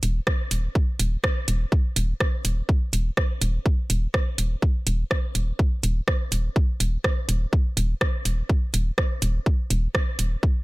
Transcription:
0.03 D#1, closed hi-hat
0.27 kick, cross-stick
0.51 D#1, closed hi-hat
0.75 kick
0.99 D#1, closed hi-hat
1.24 kick, cross-stick
1.48 D#1, closed hi-hat
1.72 kick
1.96 D#1, closed hi-hat
2.20 kick, cross-stick
2.45 D#1, closed hi-hat
2.69 kick
2.93 D#1, closed hi-hat
3.17 kick, cross-stick
3.41 D#1, closed hi-hat
3.66 kick
3.90 D#1, closed hi-hat
4.14 kick, cross-stick
4.38 D#1, closed hi-hat
4.62 kick
4.87 D#1, closed hi-hat
5.11 kick, cross-stick
5.35 D#1, closed hi-hat
5.59 kick
5.83 D#1, closed hi-hat
6.08 kick, cross-stick
6.32 D#1, closed hi-hat
6.56 kick
6.80 D#1, closed hi-hat
7.04 kick, cross-stick
7.29 D#1, closed hi-hat
7.53 kick
7.77 D#1, closed hi-hat
8.01 kick, cross-stick
8.25 D#1, closed hi-hat
8.49 kick
8.74 D#1, closed hi-hat
8.98 kick, cross-stick
9.22 D#1, closed hi-hat
9.46 kick
9.70 D#1, closed hi-hat
9.95 kick, cross-stick
10.19 D#1, closed hi-hat
10.43 kick

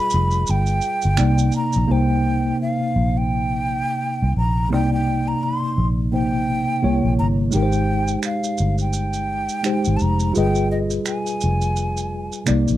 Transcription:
Already playing: G3 F4 G#4 B4 D#5 B5
0.10 F1, maracas
0.31 maracas
0.47 G1 G5, maracas
0.67 maracas
0.81 maracas
1.02 G1, maracas
1.17 C2 C3 A#3 D#4 D5, finger snap, maracas
1.38 maracas
1.52 maracas
1.56 A#5
1.73 A#1, maracas
1.87 C2 C3 A#3 D#4
1.91 C5 G5
2.62 F5
2.96 A#1
3.17 G5
4.22 C2
4.37 A#1 A#5
4.69 C2 C3 A#3 D#4
4.73 D5 G5
4.93 G5
5.28 A#5
5.43 C6
5.78 A#1
6.11 C3 A#3 D#4 C5 G5
6.82 C2 C3 A#3 E4 C#5
7.04 A#1
7.19 G1 A#5
7.51 G#1 G#3 D#4 G4 G5, maracas
7.56 A#4
7.63 C5
7.72 maracas
8.08 maracas
8.23 F5, finger snap, maracas
8.44 maracas
8.58 G1, maracas
8.78 G5, maracas
8.93 maracas
9.13 maracas
9.49 maracas
9.63 G#3 D#4 G4 C5, finger snap, maracas
9.85 G#1, maracas
9.96 A5, maracas
10.02 F1 A#5
10.20 maracas
10.33 G1 G3 F4 G#4 B4 G5, maracas
10.38 D#5
10.55 maracas
10.71 D#5
10.90 maracas
11.06 G#5, finger snap, maracas
11.27 maracas
11.41 F1, maracas
11.62 maracas
11.76 maracas
11.97 maracas
12.32 maracas
12.46 C2 C3 A#3 D#4 D5, finger snap, maracas
12.68 A#1, maracas

